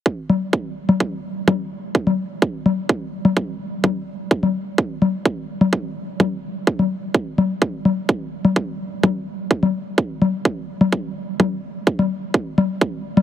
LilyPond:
\new DrumStaff \with { instrumentName = "Drums" } \drummode { \time 4/4 \tempo 4 = 127 bd8 cgl8 bd8. cgl16 bd4 <cgl bd>4 | bd16 cgl8. bd8 cgl8 bd8. cgl16 bd4 | <cgl bd>4 bd16 cgl8. bd8 cgl8 bd8. cgl16 | bd4 <cgl bd>4 bd16 cgl8. bd8 cgl8 |
bd8 cgl8 bd8. cgl16 bd4 <cgl bd>4 | bd16 cgl8. bd8 cgl8 bd8. cgl16 bd4 | <cgl bd>4 bd16 cgl8. bd8 cgl8 bd8. cgl16 | }